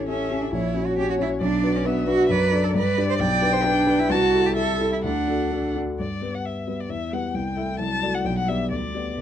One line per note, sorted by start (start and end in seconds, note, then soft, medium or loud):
0.00 0.55 A1 soft
0.00 0.08 C#4 soft
0.00 0.09 G4 soft
0.00 0.09 A4 soft
0.07 0.43 C#4 medium
0.07 0.28 C#4 soft
0.07 0.28 G4 soft
0.07 0.29 A4 soft
0.07 0.52 E5 medium
0.30 0.50 C#4 soft
0.30 0.50 G4 soft
0.30 0.51 A4 soft
0.41 0.51 D4 medium
0.52 0.74 A#1 medium
0.52 0.88 E4 medium
0.52 0.96 C#5 medium
0.74 0.94 C#4 soft
0.74 0.94 F#4 soft
0.74 0.95 C#5 soft
0.86 0.97 F#4 medium
0.96 1.16 C#4 soft
0.96 1.17 F#4 soft
0.96 1.08 G4 medium
0.96 1.40 C#5 medium
0.96 1.17 C#5 soft
1.10 1.14 F#4 medium
1.18 1.39 C#4 soft
1.18 1.29 E4 medium
1.18 1.39 F#4 soft
1.18 1.39 C#5 medium
1.41 1.63 B1 medium
1.41 1.77 D4 medium
1.41 1.87 D5 medium
1.62 1.83 D4 soft
1.62 1.83 F#4 soft
1.62 1.84 B4 soft
1.76 1.88 C#4 medium
1.84 2.09 B3 medium
1.84 2.05 D4 soft
1.84 2.05 F#4 soft
1.84 2.06 B4 medium
1.84 2.32 E5 medium
2.07 2.27 D4 medium
2.07 2.28 F#4 medium
2.07 2.29 F#4 medium
2.07 2.28 B4 medium
2.29 2.51 F#2 medium
2.29 2.65 B4 loud
2.29 2.75 D5 medium
2.52 2.72 D4 medium
2.52 2.72 A4 soft
2.52 2.73 D5 medium
2.64 2.75 A4 medium
2.74 2.96 G2 medium
2.74 3.09 B4 loud
2.74 3.21 D5 medium
2.97 3.18 D4 medium
2.97 3.18 G4 medium
2.97 3.18 D5 medium
3.09 3.19 C5 medium
3.19 3.41 B1 medium
3.19 3.55 D5 loud
3.19 4.13 G5 loud
3.41 3.62 D4 medium
3.41 3.62 G4 medium
3.41 3.62 B4 medium
3.53 3.66 C5 medium
3.64 3.84 D4 medium
3.64 4.01 D4 medium
3.64 3.85 G4 medium
3.64 3.85 B4 medium
3.86 4.07 D4 medium
3.86 4.08 G4 medium
3.86 4.08 B4 medium
3.99 4.12 E4 medium
4.10 4.32 C2 medium
4.10 4.48 F#4 loud
4.10 4.56 A5 medium
4.33 4.54 E4 soft
4.33 4.54 G4 soft
4.33 4.54 A4 medium
4.46 4.56 G4 medium
4.56 4.78 E4 soft
4.56 4.78 G4 medium
4.56 4.91 A4 medium
4.56 4.78 A4 medium
4.56 5.03 E5 medium
4.79 5.01 E4 soft
4.79 5.02 G4 soft
4.79 5.02 A4 medium
4.92 4.97 E4 medium
5.04 5.27 D2 medium
5.04 5.74 D4 medium
5.04 5.74 F#5 medium
5.28 5.49 D4 soft
5.28 5.50 F#4 soft
5.28 5.50 A4 soft
5.51 5.73 D4 soft
5.51 5.73 F#4 soft
5.51 5.73 A4 soft
5.75 5.97 D4 soft
5.75 5.97 F#4 soft
5.75 5.97 A4 soft
5.99 6.22 G2 soft
5.99 6.36 D5 medium
6.21 6.39 G3 soft
6.21 6.63 B3 soft
6.21 6.63 G4 soft
6.21 6.64 B4 soft
6.34 6.46 F#5 soft
6.45 6.81 E5 soft
6.67 6.84 G3 soft
6.67 6.88 B3 soft
6.67 6.88 G4 soft
6.67 6.88 B4 soft
6.80 6.91 D5 soft
6.89 7.11 E2 soft
6.89 7.15 E5 medium
7.12 7.29 G3 soft
7.12 7.33 B3 soft
7.12 7.33 G4 soft
7.12 7.33 B4 soft
7.12 7.36 F#5 medium
7.34 7.56 C2 soft
7.34 7.79 G5 medium
7.56 7.76 A3 soft
7.56 7.74 A3 soft
7.56 7.76 E4 soft
7.56 7.77 E5 soft
7.79 8.01 C2 soft
7.79 8.21 F#3 soft
7.79 8.15 A5 medium
8.02 8.22 A3 soft
8.02 8.23 F#4 soft
8.02 8.23 D5 soft
8.14 8.27 F#5 medium
8.24 8.47 B1 medium
8.24 8.69 G3 soft
8.24 8.36 G5 medium
8.38 8.50 F#5 medium
8.48 8.68 B3 soft
8.48 8.69 G4 soft
8.48 8.69 D5 soft
8.48 8.71 E5 medium
8.69 8.93 D2 soft
8.69 9.15 G3 soft
8.69 9.21 D5 medium
8.95 9.15 B3 soft
8.95 9.15 G4 soft
8.95 9.16 D5 soft
9.15 9.21 D2 soft
9.15 9.21 B3 soft